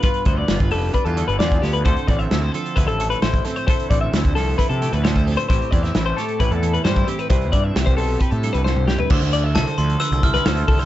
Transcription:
<<
  \new Staff \with { instrumentName = "Glockenspiel" } { \time 4/4 \key d \dorian \tempo 4 = 132 r1 | r1 | r1 | r1 |
r1 | r4 a''8 c'''8 e'''8 f'''4 r8 | }
  \new Staff \with { instrumentName = "Clean electric guitar" } { \time 4/4 \key d \dorian b'8 c''16 d''8 b'16 a'8 b'16 a'8 b'16 d''8 g'16 b'16 | c''8 d''16 e''8 c''16 a'8 b'16 a'8 b'16 c''8 a'16 c''16 | c''8 d''16 e''8 c''16 a'8 b'16 a'8 b'16 c''8 a'16 c''16 | c''8 d''16 e''8 c''16 a'8 b'16 a'8 b'16 c''8 g'16 b'16 |
c''8 d''16 e''8 c''16 a'8 b'16 a'8 b'16 c''8 g'16 b'16 | c''8 d''16 e''8 c''16 a'8 b'16 a'8 b'16 c''8 a'16 c''16 | }
  \new Staff \with { instrumentName = "Clean electric guitar" } { \time 4/4 \key d \dorian << { <b f' b'>8 b8 f'8 b'8 d'16 f'16 a'8 f'8 b8 | <c' e' a'>8 c'8 e'8 a'8 e'8 a'8 e'8 c'8 | <c' e' a'>8 c'8 e'8 a'8 e'8 g'16 a'16 d'16 e'16 c'8 | <c' e' g'>8 c'8 e'8 g'8 e'8 a'8 d'16 e'16 c'8 |
<e' g' b'>8 e'8 g'8 a'8 g'8 a'8 g'8 e'8 | e'4 a'4. e'8 a'4 | } \\ { g,4. g4 d4. | d4. f4 a,4. | d4. f4 a,4. | a,4. a4 e4. |
c4. c'4 g,4. | d4. f4 d4. | } >> }
  \new Staff \with { instrumentName = "Picked electric bass" } { \clef bass \time 4/4 \key d \dorian r8 d,8 g,,16 g,,16 f,,8 r16 e,8 g,,16 e,8 d,8 | d,16 r16 a,,8 d,8 r8 d,16 a,,8. a,,8 r8 | r8 a,,8 d,16 d,16 c,8 r16 c8 d,4~ d,16 | a,,16 r16 e,8 a,,8 r8 a,,16 e,8. g,8 r8 |
c,8 g,8 c,16 c,16 b,,8 r16 a,8 c,4~ c,16 | d,16 d,8. c,16 r16 d,8 r16 c,8. d,8 c,8 | }
  \new DrumStaff \with { instrumentName = "Drums" } \drummode { \time 4/4 <hh bd>16 hh16 <hh bd>8 <hh sn>16 <hh bd>16 hho8 <hh bd>16 hh16 hh16 hh16 <hh sn>16 <hh bd>16 <hho sn>16 hh16 | <hh bd>16 hh16 <hh bd>16 hh16 <hh sn>8 hh16 hh16 <hh bd>16 hh16 hh16 hh16 <hh sn>16 <hh bd>16 <hh sn>16 hh16 | <hh bd>16 hh16 <hh bd>8 <hh sn>16 <hh bd>16 <hho sn>8 <hh bd>16 hh16 hh16 hh16 <hh sn>16 <hh bd>16 hho16 hh16 | <hh bd>16 hh16 <hh bd>16 <hh sn>16 <hh sn>8 <hh sn>16 hh16 <hh bd>16 hh16 hh16 hh16 <hh sn>16 <hh bd>16 hh16 hh16 |
<hh bd>16 hh16 <hh bd>8 <hh sn>16 <hh bd>16 hho8 <hh bd>16 hh16 hh16 hh16 sn16 toml16 sn16 tomfh16 | <cymc bd>16 hh16 hh8 <hh sn>16 hh16 hh16 hh16 hh16 hh16 <hh bd>16 <hh sn>16 <hh sn>16 hh16 <hho bd>16 hh16 | }
>>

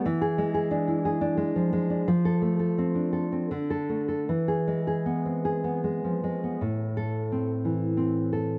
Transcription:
\new Staff \with { instrumentName = "Nylon-string guitar" } { \time 3/4 \key e \phrygian \tempo 4 = 86 << { r16 gis'8 r2 r16 | r16 a'8 r4. a'8 r16 | r16 gis'8 r2 r16 | r8 a'8. r4. r16 | } \\ { e8 gis16 gis'16 d'16 e'16 gis'16 d'16 gis16 f16 gis16 d'16 | f8 a16 a'16 c'16 d'16 a'16 c'16 d8 a16 a'16 | e8 gis16 gis'16 b16 c'16 gis'16 b16 gis16 f16 gis16 b16 | a,4 c'8 e8 c'8 a'8 | } >> }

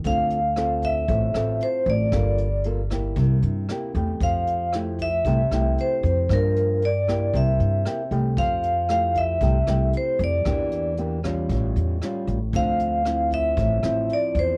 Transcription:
<<
  \new Staff \with { instrumentName = "Vibraphone" } { \time 4/4 \key f \major \tempo 4 = 115 f''4. e''4. c''8 d''8~ | d''4 r2. | f''4 r8 e''4. c''4 | bes'4 d''4 e''4. r8 |
f''4 f''8 e''4. c''8 d''8~ | d''4 r2. | f''4. e''4. d''8 c''8 | }
  \new Staff \with { instrumentName = "Nylon-string guitar" } { \time 4/4 \key f \major << { <c' f' a'>8 r8 <c' f' a'>4 <c' f' a'>8 <c' f' a'>4. | <bes f' a'>8 r8 <bes f' a'>8 <bes e' g'>4. <bes e' g'>8 <a g'>8~ | <a g'>4 <a e' g'>8 r8 <a e' g'>8 <a e' g'>4. | <f bes d'>4 r8 <bes e' g'>4. <bes e' g'>8 <a g'>8~ |
<a g'>4 <a e' g'>4 <a e' g'>8 <a e' g'>4. | <bes d' g'>4 <bes d' g'>8 <g des' f'>4. <g cis' f'>8 r8 | <f c'>4 <f c' e'>4. <f c' e'>4. | } \\ { d2 a,2 | g2 c2 | f2 c2 | g,2 c2 |
f2 c2 | e2 a,2 | d2 a,2 | } >> }
  \new Staff \with { instrumentName = "Upright bass" } { \clef bass \time 4/4 \key f \major d,2 a,,8 a,,8 r8 a,,8 | g,,2 c,8 g,8 r8 e,8 | f,2 c,8 c,8 r8 f,8 | g,2 c,8 g,8 r8 c,8 |
f,2 c,8 c,8 r8 f,8 | e,2 a,,8 e,8 r8 a,,8 | d,2 a,,8 a,,8 r8 e,8 | }
  \new DrumStaff \with { instrumentName = "Drums" } \drummode { \time 4/4 <hh bd>8 hh8 <hh ss>8 <hh bd>8 <hh bd>8 <hh ss>8 hh8 <hh bd>8 | <hh bd ss>8 hh8 hh8 <hh bd ss>8 <hh bd>8 hh8 <hh ss>8 <hh bd>8 | <hh bd>8 hh8 <hh ss>8 <hh bd>8 <hh bd>8 <hh ss>8 hh8 <hh bd>8 | <hh bd ss>8 hh8 hh8 <hh bd ss>8 <hh bd>8 hh8 <hh ss>8 <hh bd>8 |
<hh bd>8 hh8 <hh ss>8 <hh bd>8 <hh bd>8 <hh ss>8 hh8 <hh bd>8 | <hh bd ss>8 hh8 hh8 <hh bd ss>8 <hh bd>8 hh8 <hh ss>8 <hh bd>8 | <hh bd>8 hh8 <hh ss>8 <hh bd>8 <hh bd>8 <hh ss>8 hh8 <hh bd>8 | }
>>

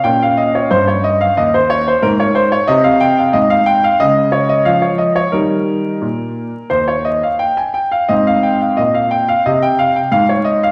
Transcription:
<<
  \new Staff \with { instrumentName = "Grand piano" } { \time 4/4 \key aes \major \tempo 4 = 90 << { g''16 f''16 ees''16 des''16 c''16 des''16 ees''16 f''16 ees''16 c''16 des''16 c''16 bes'16 des''16 c''16 des''16 | ees''16 f''16 g''16 f''16 ees''16 f''16 g''16 f''16 ees''8 des''16 ees''16 f''16 des''16 ees''16 des''16 | bes'2 c''16 des''16 ees''16 f''16 g''16 aes''16 g''16 f''16 | ees''16 f''16 g''16 f''16 ees''16 f''16 g''16 f''16 ees''16 g''16 f''16 g''16 f''16 des''16 ees''16 f''16 | } \\ { des'1 | c'2 aes2 | r1 | c'1 | } >> }
  \new Staff \with { instrumentName = "Grand piano" } { \clef bass \time 4/4 \key aes \major bes,4 g,4 ees,4 aes,4 | c4 aes,4 des4 f4 | <ees g ees'>4 bes,4 ees,4 r4 | aes,4 bes,4 c4 aes,4 | }
>>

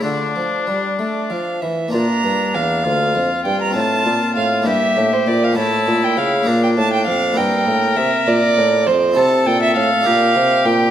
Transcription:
<<
  \new Staff \with { instrumentName = "Violin" } { \time 6/8 \key bes \lydian \tempo 4. = 66 d''4. d''8 f''8 e''8 | bes''4 f''4. g''16 bes''16 | a''4 f''8 e''8. c''16 d''16 f''16 | a''8. g''16 f''8. g''16 a''16 g''16 f''8 |
g''4 e''8 d''4 c''8 | a''8 g''16 e''16 f''4. g''8 | }
  \new Staff \with { instrumentName = "Oboe" } { \time 6/8 \key bes \lydian d'2~ d'8 r8 | d'4. f'4.~ | f'4. g'4. | e'4. d'4. |
bes'2~ bes'8 r8 | a'4. g'4. | }
  \new Staff \with { instrumentName = "Harpsichord" } { \time 6/8 \key bes \lydian <a d' f'>2. | <bes d' f'>2. | <c' f'>4. <bes d' e'>4. | <a cis' e'>4. <bes d' bes'>4. |
<bes e' bes'>2. | <c' e' a'>4. <d' g' bes'>4. | }
  \new Staff \with { instrumentName = "Harpsichord" } { \clef bass \time 6/8 \key bes \lydian d8 f8 g8 a8 f8 e8 | bes,8 g,8 e,8 d,8 f,8 g,8 | a,8 bes,8 a,8 g,8 a,8 bes,8 | a,8 bes,8 cis8 bes,8 a,8 f,8 |
g,8 a,8 c8 bes,8 a,8 f,8 | c8 bes,8 a,8 bes,8 c8 bes,8 | }
  \new Staff \with { instrumentName = "Bassoon" } { \clef bass \time 6/8 \key bes \lydian d8 f8 g8 a8 f8 e8 | bes,8 g,8 e,8 d,8 f,8 g,8 | a,8 bes,8 a,8 g,8 a,8 bes,8 | a,8 bes,8 cis8 bes,8 a,8 f,8 |
g,8 a,8 c8 bes,8 a,8 f,8 | c8 bes,8 a,8 bes,8 c8 bes,8 | }
>>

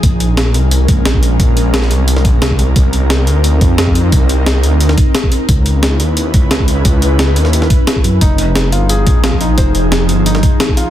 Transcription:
<<
  \new Staff \with { instrumentName = "Felt piano" } { \time 4/4 \key f \minor \tempo 4 = 176 r1 | r1 | r1 | r1 |
r1 | r1 | ees'8 r4 f'8 aes'8 r8 f'16 r16 ees'16 r16 | c''8 r4. ees'8 r4 f'8 | }
  \new Staff \with { instrumentName = "Ambient pad" } { \time 4/4 \key f \minor << { bes'1~ | bes'1~ | bes'1~ | bes'1 |
ces''1~ | ces''1 | aes'1~ | aes'1 | } \\ { <aes des'>1~ | <aes des'>2.~ <aes des'>8 <c' ees'>8~ | <c' ees'>1~ | <c' ees'>1 |
<des' fes'>1~ | <des' fes'>1 | <f ees'>1~ | <f ees'>1 | } >> }
  \new Staff \with { instrumentName = "Detuned saw bass" } { \clef bass \time 4/4 \key f \minor bes,,4. c,4 bes,,4. | bes,,4. c,4 bes,,8 c,4 | c,4. d,4 f,4. | c,4. d,4 r4. |
des,4. ees,4 des,4. | des,4. ees,4 r4 ges,8 | f,,4. g,,4 bes,,4. | f,,4. g,,4 r4. | }
  \new DrumStaff \with { instrumentName = "Drums" } \drummode { \time 4/4 <hh bd>8 hh8 <hh sn>8 hh8 hh8 <hh bd>8 <hh sn>16 bd16 hh8 | <hh bd>8 hh8 <hh sn>16 sn16 hh8 hh16 sn16 <hh bd>8 <hh sn>16 bd16 hh8 | <hh bd>8 hh8 <hh sn>8 hh8 hh8 <hh bd>8 <hh sn>16 bd16 hh8 | <hh bd>8 hh8 <hh sn>8 hh8 hh16 sn16 <hh bd>8 <hh sn>16 bd16 hh8 |
<hh bd>8 hh8 <hh sn>8 hh8 hh8 <hh bd>8 <hh sn>16 bd16 hh8 | <hh bd>8 hh8 <hh sn>8 hh16 sn16 hh16 sn16 <hh bd>8 <hh sn>16 bd16 hh8 | <hh bd>8 hh8 <hh sn>8 hh8 hh8 <hh bd>8 <hh sn>16 bd16 hh8 | <hh bd>8 hh8 <hh sn>8 hh8 hh16 sn16 <hh bd>8 <hh sn>16 bd16 hh8 | }
>>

